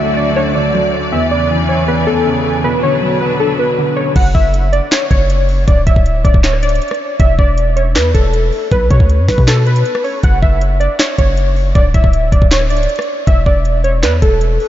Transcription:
Already playing: string section D2 D3 F#4 D5, grand piano D3 F#3 A3, synth keys E5
0.17 synth keys D5
0.36 grand piano D4, synth keys C#5
0.55 grand piano D3, synth keys D5
0.74 grand piano F#3
1.12 grand piano E2, string section E2 E3 G#5, synth keys E5
1.31 grand piano C#3, synth keys D5
1.50 grand piano E3
1.69 synth keys C#5
1.88 grand piano B3, synth keys B4
2.07 grand piano E2, synth keys A4
2.26 grand piano C#3
2.64 grand piano B2, string section B2 F#3 D4 B4, synth keys B4
2.83 grand piano D3, synth keys C#5
3.02 grand piano F#3
3.21 grand piano B3, synth keys B4
3.40 grand piano D4, synth keys A4
3.59 grand piano B2, synth keys B4
3.78 grand piano D3
3.96 synth keys C#5
4.16 808-style bass F#1, synth keys F#5, kick, closed hi-hat, crash
4.34 808-style bass F#1, synth keys E5, kick
4.54 closed hi-hat
4.73 synth keys D5, closed hi-hat
4.92 synth keys C#5, snare, clap, closed hi-hat
5.11 808-style bass F#1, synth keys C#5, kick, closed hi-hat
5.30 closed hi-hat
5.49 open hi-hat
5.67 808-style bass D1, synth keys D5, kick, closed hi-hat
5.87 808-style bass D1, synth keys E5, kick, closed hi-hat
5.96 808-style bass D1, kick
6.06 closed hi-hat
6.24 808-style bass D1, synth keys D5, kick, closed hi-hat
6.34 808-style bass D1, kick
6.44 synth keys C#5, snare, clap, closed hi-hat
6.53 cross-stick
6.63 synth keys D5, closed hi-hat
6.69 closed hi-hat
6.75 closed hi-hat
6.82 closed hi-hat
6.88 cross-stick, closed hi-hat
6.94 closed hi-hat
7.20 808-style bass E1, synth keys E5, kick, closed hi-hat
7.39 808-style bass E1, synth keys D5, kick
7.58 closed hi-hat
7.76 synth keys C#5, closed hi-hat
7.96 808-style bass E2, synth keys B4, snare, clap, closed hi-hat
8.14 808-style bass E1, synth keys A4, kick, closed hi-hat
8.34 closed hi-hat
8.53 open hi-hat
8.71 808-style bass B1, synth keys B4, kick, closed hi-hat
8.91 808-style bass B2, synth keys C#5, kick, closed hi-hat
9.00 808-style bass D2, kick
9.10 closed hi-hat
9.19 808-style bass F#2
9.28 808-style bass B1, synth keys B4, kick, snare, open hi-hat
9.38 808-style bass B2, kick
9.48 synth keys A4, snare, clap, closed hi-hat
9.57 cross-stick
9.67 synth keys B4, closed hi-hat
9.76 closed hi-hat
9.86 closed hi-hat
9.95 cross-stick
10.04 synth keys C#5, open hi-hat
10.23 808-style bass F#1, synth keys F#5, kick, closed hi-hat
10.42 808-style bass F#1, synth keys E5, kick
10.61 closed hi-hat
10.80 synth keys D5, closed hi-hat
10.99 synth keys C#5, snare, clap, closed hi-hat
11.18 808-style bass F#1, synth keys C#5, kick, closed hi-hat
11.37 closed hi-hat
11.56 open hi-hat
11.75 808-style bass D1, synth keys D5, kick, closed hi-hat
11.94 808-style bass D1, synth keys E5, kick, closed hi-hat
12.04 808-style bass D1, kick
12.13 closed hi-hat
12.32 808-style bass D1, synth keys D5, kick, closed hi-hat
12.42 808-style bass D1, kick
12.51 synth keys C#5, snare, clap, closed hi-hat
12.61 cross-stick
12.70 synth keys D5, closed hi-hat
12.77 closed hi-hat
12.83 closed hi-hat
12.89 closed hi-hat
12.96 cross-stick, closed hi-hat
13.02 closed hi-hat
13.27 808-style bass E1, synth keys E5, kick, closed hi-hat
13.46 808-style bass E1, synth keys D5, kick
13.65 closed hi-hat
13.84 synth keys C#5, closed hi-hat
14.03 808-style bass E2, synth keys B4, snare, clap, closed hi-hat
14.22 808-style bass E1, synth keys A4, kick, closed hi-hat
14.41 closed hi-hat
14.60 open hi-hat

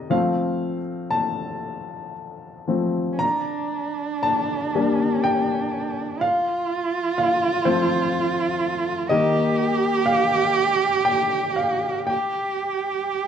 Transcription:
Already playing: upright piano C3 G3 D#4 D5 D#5
0.10 upright piano F3 A3 C4 F5
1.11 upright piano A5
2.67 upright piano F3 A3 C4
3.13 cello C#4
3.19 cello D4, upright piano A#5
4.23 upright piano A5
4.75 upright piano G3 A#3 D4
5.24 upright piano G5
6.21 cello F4, upright piano F5
7.18 upright piano F5
7.65 upright piano F3 A3 C4 C5
9.09 upright piano D#3 G3 A#3 D#5, cello G4
10.06 upright piano F5
11.05 upright piano G5
11.56 upright piano F5
12.07 cello G4, upright piano G5

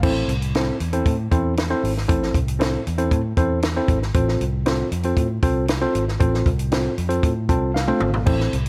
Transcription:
0.03 fingered electric bass A1, tine electric piano A2 C4 E4 A4 C5, kick, crash
0.28 fingered electric bass C2, closed hi-hat
0.42 closed hi-hat
0.55 tine electric piano C4 E4 A4 C5, snare, closed hi-hat
0.80 fingered electric bass E2, closed hi-hat
0.93 tine electric piano C4 E4 A4 C5, closed hi-hat
1.06 fingered electric bass A2, kick, closed hi-hat
1.31 fingered electric bass E2, tine electric piano C4 E4 A4 C5, kick, closed hi-hat
1.57 snare, closed hi-hat
1.70 tine electric piano C4 E4 A4 C5
1.83 fingered electric bass G#1, open hi-hat
1.97 snare
2.08 fingered electric bass A1, tine electric piano A2 C4 E4 A4 C5, kick, closed hi-hat
2.23 snare
2.34 fingered electric bass C2, kick, closed hi-hat
2.48 closed hi-hat
2.59 tine electric piano C4 E4 A4 C5, snare, closed hi-hat
2.87 fingered electric bass E2, closed hi-hat
2.98 tine electric piano C4 E4 A4 C5, closed hi-hat
3.11 fingered electric bass A2, kick, closed hi-hat
3.37 fingered electric bass E2, tine electric piano C4 E4 A4 C5, kick, closed hi-hat
3.63 snare, closed hi-hat
3.76 tine electric piano C4 E4 A4 C5
3.88 fingered electric bass G#1, kick, closed hi-hat
4.02 snare
4.14 fingered electric bass A1, tine electric piano A2 C4 F4 A4 C5, kick, closed hi-hat
4.28 snare
4.41 fingered electric bass C2, closed hi-hat
4.66 tine electric piano C4 F4 A4 C5, snare, closed hi-hat
4.92 fingered electric bass F2, closed hi-hat
5.03 tine electric piano C4 F4 A4 C5, closed hi-hat
5.17 fingered electric bass A2, kick, closed hi-hat
5.43 fingered electric bass C2, tine electric piano C4 F4 A4 C5, kick, closed hi-hat
5.68 snare, closed hi-hat
5.81 tine electric piano C4 F4 A4 C5
5.95 fingered electric bass G#1, closed hi-hat
6.08 snare
6.19 fingered electric bass A1, tine electric piano A2 C4 F4 A4 C5, kick, closed hi-hat
6.34 snare
6.46 fingered electric bass C2, kick, closed hi-hat
6.59 closed hi-hat
6.72 tine electric piano C4 F4 A4 C5, snare, closed hi-hat
6.98 fingered electric bass F2, closed hi-hat
7.09 tine electric piano C4 F4 A4 C5, closed hi-hat
7.23 fingered electric bass A2, kick, closed hi-hat
7.49 fingered electric bass C2, tine electric piano C4 F4 A4 C5 A5, kick, closed hi-hat
7.74 tine electric piano F5, snare
7.88 tine electric piano C4 F4 A4 C5, high tom
8.00 fingered electric bass G#1, mid tom
8.14 floor tom
8.26 fingered electric bass A1, tine electric piano A2 C4 E4 A4 C5, kick, crash
8.40 snare
8.53 fingered electric bass C2, closed hi-hat
8.66 closed hi-hat

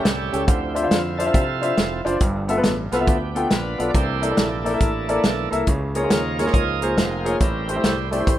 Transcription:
Already playing: grand piano A2, tonewheel organ G3 G4
0.03 fingered electric bass C2, tonewheel organ C#4 E4 A4, snare, closed hi-hat
0.32 fingered electric bass C#2, grand piano C#4 G4 A4 G5, closed hi-hat
0.47 fingered electric bass D2, grand piano D3, tonewheel organ F3 C4 E4 G4, kick, closed hi-hat
0.75 grand piano D4 F4 C5 E5, closed hi-hat
0.83 grand piano D4 F4 C5 F5
0.90 fingered electric bass F2, tonewheel organ F4, snare, closed hi-hat
1.18 tonewheel organ C4 F4 A4, grand piano D4 F4 C5 E5, closed hi-hat
1.26 grand piano D4 F4 C5 E5
1.34 fingered electric bass C3, kick, closed hi-hat
1.62 grand piano D4 F4 C5 E5, closed hi-hat
1.78 fingered electric bass F1, snare, closed hi-hat
2.05 fingered electric bass F#1, grand piano D4 F4 C5 D5, closed hi-hat
2.20 fingered electric bass G1, grand piano G2, kick, closed hi-hat
2.48 grand piano B3 F4 A4 E5, closed hi-hat
2.57 grand piano B3 F4 A4 B4
2.64 fingered electric bass A1, snare, closed hi-hat
2.92 fingered electric bass C2, tonewheel organ F3 A3 B3 E4 F4, grand piano B3 F4 A4 B4, snare, closed hi-hat
3.00 grand piano B3 F4 A4 E5
3.07 fingered electric bass D2, tonewheel organ B3 D4 G4, kick, closed hi-hat
3.35 grand piano B3 F4 A4 G5, closed hi-hat
3.51 fingered electric bass A#1, tonewheel organ D4 F4 B4, snare, closed hi-hat
3.79 fingered electric bass B1, grand piano B3 F4 A4 D5, closed hi-hat
3.90 grand piano C3, tonewheel organ D5
3.94 fingered electric bass C2, tonewheel organ E3 A3 A#3 D4 E4 G4 C5, kick, closed hi-hat
4.22 grand piano A#3 E4 A4 D5, closed hi-hat
4.30 grand piano A#3 E4 A4 D5
4.37 fingered electric bass A#1, tonewheel organ D4 E4 A4, snare, closed hi-hat
4.64 grand piano A#3 E4 A4 D5, closed hi-hat
4.73 grand piano A#3 E4 A4 E5
4.80 fingered electric bass A1, kick, closed hi-hat
5.08 grand piano A#3 E4 A4 D5, closed hi-hat
5.24 fingered electric bass B1, snare, closed hi-hat
5.51 fingered electric bass C2, grand piano A#3 E4 A4 E5, closed hi-hat
5.67 fingered electric bass C#2, grand piano C#3, kick, closed hi-hat
5.95 tonewheel organ F3 A#3 D#4 A#4, grand piano A#3 F4 G#4 C#5, closed hi-hat
6.03 grand piano A#3 F4 G#4 C#5
6.10 fingered electric bass D#2, tonewheel organ F4 A#4 C#5, snare, closed hi-hat
6.39 grand piano A#3 F4 G#4 C#5, snare, closed hi-hat
6.46 grand piano A#3 F4 G#4 C#5, snare
6.53 fingered electric bass C#2, tonewheel organ G#4 A#4 D#5, kick, closed hi-hat
6.82 grand piano A#3 F4 G#4 C5, tonewheel organ C#5, closed hi-hat
6.94 fingered electric bass F1, tonewheel organ C#5, snare, closed hi-hat
6.99 tonewheel organ F4 G#4 C5
7.24 grand piano A#3 F4 G#4 C#5, closed hi-hat
7.40 fingered electric bass A1, grand piano A2, tonewheel organ G3 C4 E4 G4 A#4, kick, closed hi-hat
7.69 grand piano A3 E4 G4 C5, closed hi-hat
7.75 grand piano A3 E4 G4 C5
7.84 fingered electric bass C2, tonewheel organ A4, snare, closed hi-hat
8.11 grand piano A3 E4 G4 D5, tonewheel organ E4 G4 C5, closed hi-hat
8.19 grand piano A3 E4 G4 C5
8.26 fingered electric bass A1, tonewheel organ G3 C4 E4, kick, closed hi-hat

